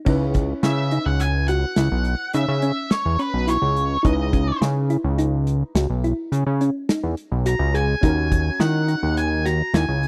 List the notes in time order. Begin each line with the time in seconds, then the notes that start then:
0.05 C#2 C#4 D#4 E4 B4, kick, crash
0.34 kick, closed hi-hat
0.63 C#3 E4 E5, snare, closed hi-hat
0.91 D#4, closed hi-hat
1.06 C#2 F#5
1.20 G#5, closed hi-hat
1.48 F#4 F#5, closed hi-hat
1.76 C#2 E4, snare, closed hi-hat
1.92 B1
2.04 closed hi-hat
2.33 C#3 D#4 E5, closed hi-hat
2.48 C#3
2.62 C#4, closed hi-hat
2.91 C#5, snare, closed hi-hat
3.06 E2
3.19 C#4 B4, closed hi-hat
3.34 B1
3.48 E4 C#5, closed hi-hat
3.62 C#2
3.77 closed hi-hat
4.03 C#2 D#4 E4 B4 D#5, kick, closed hi-hat
4.33 C#4, kick, closed hi-hat
4.61 C#3, snare, closed hi-hat
4.90 E4, closed hi-hat
5.04 C#2
5.18 D#4, closed hi-hat
5.47 closed hi-hat
5.75 C#2 F#4, snare, closed hi-hat
5.90 B1
6.04 E4, closed hi-hat
6.32 C#3, closed hi-hat
6.46 C#3
6.61 C#4, closed hi-hat
6.89 D#4, snare, closed hi-hat
7.03 E2
7.17 closed hi-hat
7.32 B1
7.46 F#4 A#5, closed hi-hat
7.59 C#2
7.74 G#4 G#5, closed hi-hat
8.01 D#2 C#4 D#4 F#4, kick, closed hi-hat
8.05 A#4
8.32 kick, closed hi-hat
8.60 D#3 E4 F#5, snare, closed hi-hat
8.88 D#4, closed hi-hat
9.03 D#2
9.17 G#5, closed hi-hat
9.46 F#4 A#5, snare, closed hi-hat
9.74 D#2 E4 G#5, snare, closed hi-hat
9.89 C#2
10.03 closed hi-hat